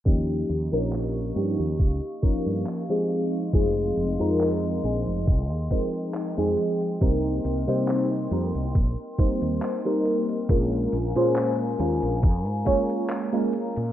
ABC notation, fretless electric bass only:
X:1
M:4/4
L:1/16
Q:"Swing 16ths" 1/4=69
K:Fm
V:1 name="Fretless electric bass" clef=bass
E,,2 E,, B,,,3 G,, E,, D,, z2 G,, z4 | F,,,2 F,,, F,,3 B,,, F,,, C,, E,, z3 F,, z2 | C,,2 C,, C,3 F,, C,, B,,, z2 E,, z4 | B,,,2 B,,, B,,3 E,, B,,, F,, A,, z4 z B,, |]